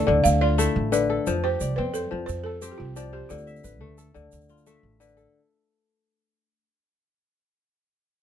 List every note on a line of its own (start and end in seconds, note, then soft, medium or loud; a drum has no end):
0.00 0.12 E3 medium
0.00 0.58 A3 medium
0.00 1.09 A4 medium
0.00 0.79 B4 medium
0.00 0.25 D5 medium
0.07 0.22 D2 loud
0.07 0.91 D3 medium
0.24 0.66 D2 medium
0.24 0.41 F5 loud
0.24 shaker medium
0.41 1.92 F4 medium
0.41 0.73 D5 medium
0.58 2.58 A3 medium
0.58 1.33 E4 medium
0.58 shaker medium
0.76 1.17 A1 medium
0.92 1.31 D3 medium
0.92 1.84 B4 medium
0.92 shaker medium
1.10 2.41 A4 medium
1.27 1.54 F2 medium
1.27 2.10 F3 medium
1.27 shaker medium
1.44 2.61 G4 medium
1.44 1.78 C5 loud
1.61 1.80 C2 medium
1.61 2.72 D5 medium
1.61 shaker medium
1.76 2.06 F2 loud
1.76 2.61 C4 medium
1.76 1.94 B4 medium
1.94 2.29 A4 loud
1.94 3.12 C5 medium
1.94 shaker medium
2.11 2.26 F2 medium
2.11 2.95 F3 medium
2.26 2.70 F2 medium
2.26 2.45 C5 loud
2.26 shaker medium
2.44 2.72 A4 loud
2.44 3.77 A4 medium
2.62 3.70 C4 medium
2.62 4.03 G4 medium
2.62 shaker medium
2.71 2.79 G4 medium
2.78 3.21 C2 medium
2.78 3.13 F4 medium
2.96 3.35 F3 medium
2.96 4.07 D5 medium
2.96 shaker medium
3.13 3.30 G4 medium
3.13 3.70 C5 medium
3.29 3.58 D2 medium
3.29 4.13 D3 medium
3.29 4.95 F4 medium
3.29 shaker medium
3.47 4.55 E5 medium
3.47 shaker soft
3.56 shaker soft
3.64 3.81 A1 medium
3.64 4.87 B4 medium
3.64 shaker medium
3.81 4.09 D2 loud
3.81 4.66 A3 medium
3.98 5.16 A4 medium
3.98 shaker medium
4.14 4.29 D2 loud
4.14 4.99 D3 medium
4.14 shaker soft
4.32 4.74 D2 loud
4.32 shaker medium
4.49 6.01 F4 medium
4.49 shaker soft
4.57 shaker soft
4.66 6.66 A3 medium
4.66 5.70 E5 medium
4.66 shaker medium
4.83 5.25 A1 medium
5.00 5.39 D3 medium
5.00 6.23 B4 medium
5.00 shaker medium
5.17 6.49 A4 medium
5.17 shaker soft